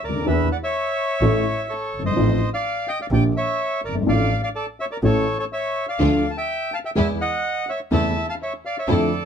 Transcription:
0.03 D2 A#4 D5
0.09 C#2
0.15 D2
0.21 D#2
0.26 E2 E3 B3 D4 G#4 B4 E5
0.52 D5 F#5
0.64 C#5 E5
1.21 A1 A2 E3 A3 C#4 A4
1.69 A4 C#5
1.93 G1
1.99 F#1
2.04 G1 C5 D#5
2.10 G#1
2.16 A1 A2 F3 C4 D#4 A4
2.54 D5 F5
2.88 D#5 G5
3.02 D5 F5
3.10 A#1 A#2 F3 A#3 D4 G4 D5 G5
3.37 C#5 E5
3.83 G1 A#4 D5
3.88 F#1
3.94 G1
4.01 G#1
4.06 A1 A2 F3 A3 D4 A4 D5 F5
4.44 D5 F5
4.55 A4 D5
4.80 C#5 E5
4.91 A#4 D5
5.03 A1 A2 E3 A3 C#4 A4 C#5
5.39 A4 C#5
5.53 C#5 E5
5.89 D5 F5
5.99 D2 D3 F3 A3 D4 F4 A4
6.30 A5
6.37 E5 G5
6.73 F5 A5
6.85 E5 G5
6.95 E2 E3 G#3 B3 E4 G#4 E5 G#5
7.21 D#5 F#5
7.69 C#5 E5
7.91 E2 C#3 E3 A3 C#4 E4 E5 A5
8.29 F5 A5
8.43 C#5 E5
8.65 D5 F5
8.79 C#5 E5
8.87 F2 D3 F3 A3 D4 E4
8.91 A4 D5

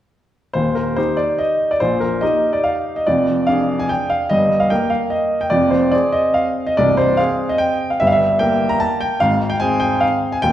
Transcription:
0.53 D#1 D#2 C5
0.75 A#4
0.96 D#4 G4 C5
1.17 D5
1.39 D#5
1.71 D5
1.80 A#1 A#2 C5
2.00 A#4
2.21 D#4 G4 D#5
2.53 D5
2.64 F5
2.96 D#5
3.07 F1 F2 D5
3.47 D4 G#4 F5
3.80 G#5
3.89 G5
4.10 F5
4.29 G1 G2 D#5
4.60 F5
4.70 A#3 A#4 G5
4.90 F5
5.10 D#5
5.41 G5
5.50 F1 F2 D5
5.70 C5
5.92 C4 G#4 D5
6.12 D#5
6.34 F5
6.67 D#5
6.77 C1 C2 D5
6.97 C5
7.17 C4 G#4 F5
7.49 D#5
7.58 G5
7.90 F5
8.00 G1 G2 E5
8.07 F5
8.12 E5
8.39 A#3 A#4 G5
8.69 A#5
8.80 A5
9.01 G5
9.20 G#1 G#2 F5
9.50 G5
9.60 C4 G#4 G#5
9.80 G5
10.00 F5
10.32 G#5
10.42 D#1 D#2 G5

